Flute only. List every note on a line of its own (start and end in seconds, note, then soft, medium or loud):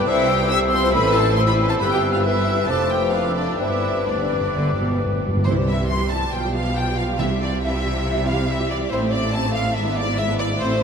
0.08 0.51 E6 medium
0.52 0.93 E6 medium
0.94 1.37 E6 medium
1.39 1.81 E6 medium
1.81 2.22 E6 medium
2.25 2.71 E6 medium
2.70 3.14 D6 medium
3.14 3.60 D6 medium
3.60 4.06 D6 medium
4.08 5.22 D6 medium